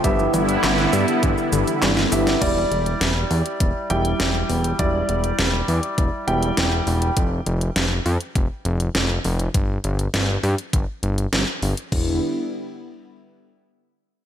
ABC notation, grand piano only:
X:1
M:4/4
L:1/8
Q:1/4=101
K:Ephr
V:1 name="Grand piano"
[B,Ge]4- [B,Ge] z2 [B,Ge] | [G,Ed]4- [G,Ed] [G,Eg]3 | [G,Ed]4- [G,Ed] [G,Eg]3 | z8 |
z8 | z8 |]